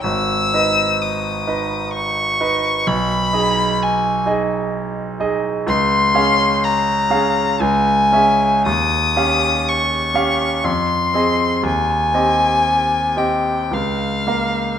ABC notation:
X:1
M:3/4
L:1/8
Q:1/4=61
K:G#m
V:1 name="Violin"
e'2 d'2 c'2 | b2 g z3 | [K:Dblyd] c'2 b2 a2 | e'2 d'2 c'2 |
a3 g f2 |]
V:2 name="Grand piano"
G,,, [DBd]2 [DBd]2 [DBd] | B,,, [DGd]2 [DGd]2 [DGd] | [K:Dblyd] D,, [DAf]2 [DAf] D,, [DA_f] | E,, [DGf]2 [DGf] F,, [CAe] |
E,, [CGe]2 [CGe] D,, [B,Bf] |]